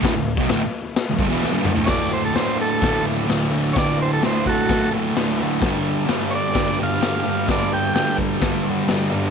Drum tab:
CC |----------------|x---------------|----------------|----------------|
HH |o---o---o-------|----o---o---o---|o---o---o---o---|o---o---o---o---|
SD |o---o---o---o---|o---o---o---o---|o---o---o---o---|o---o---o---o---|
T2 |--------------o-|----------------|----------------|----------------|
FT |---------------o|----------------|----------------|----------------|
BD |o--o------o-----|o-------o-------|o-----o-o-------|o-------o-------|

CC |----------------|
HH |o---o---o---o---|
SD |o---o---o---o---|
T2 |----------------|
FT |----------------|
BD |o-----o-o-------|